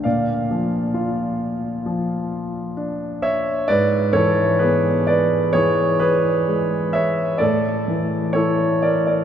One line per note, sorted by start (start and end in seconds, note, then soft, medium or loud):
0.00 0.90 F5 medium
0.00 0.10 G5 medium
0.05 3.65 A#2 medium
0.05 0.91 D5 medium
0.51 1.85 F3 soft
0.94 2.72 F4 medium
1.86 3.65 F3 soft
2.77 3.66 D4 soft
3.22 3.65 C#5 medium
3.22 3.65 E5 medium
3.68 7.37 G#2 medium
3.68 4.11 B4 medium
3.68 4.11 D5 medium
4.13 5.53 E3 soft
4.13 4.57 A4 medium
4.13 4.62 C#5 medium
4.59 6.44 B3 medium
4.59 5.04 G#4 medium
4.59 5.06 B4 medium
5.07 5.51 B4 medium
5.07 5.51 D5 medium
5.53 7.36 E3 soft
5.53 5.98 G#4 medium
5.53 5.97 C#5 medium
6.00 6.90 G#4 medium
6.00 6.96 B4 medium
6.48 7.38 G#3 medium
6.93 7.37 C#5 medium
6.93 7.41 E5 medium
7.38 9.24 A2 medium
7.38 8.31 A4 medium
7.38 8.37 D5 medium
7.88 9.24 E3 soft
8.33 9.24 E4 medium
8.33 8.81 A4 medium
8.33 8.79 C#5 medium
8.82 9.07 A#4 soft
8.82 9.05 D5 medium
9.07 9.24 A#4 medium
9.07 9.24 D5 medium